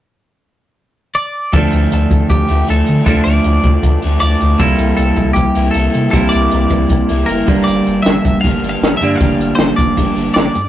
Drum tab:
HH |--------|xxxxxxxx|xxxxxxxx|xxxxxxxx|
SD |--------|--------|--------|--------|
BD |--------|o--oo---|o--oo---|o--oo---|

HH |xxxxxxxx|xxxxxxxx|xxxxxxxx|
SD |--------|--o---o-|--o---o-|
BD |o--oo--o|---oo---|o--oo---|